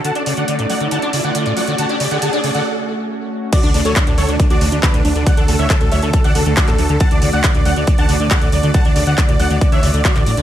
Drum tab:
CC |----------------|----------------|x---------------|----------------|
HH |xxoxxxoxxxoxxxox|xxoxxxox--------|xxoxxxoxxxoxxxox|xxoxxxoxxxoxxxox|
CP |----------------|----------------|----x-------x---|----x-------xx--|
BD |----------------|----------------|o---o---o---o---|o---o---o---o---|

CC |----------------|----------------|
HH |xxoxxxoxxxoxxxox|xxoxxxoxxxoxxxox|
CP |----x-------x---|----x-------xx--|
BD |o---o---o---o---|o---o---o---o---|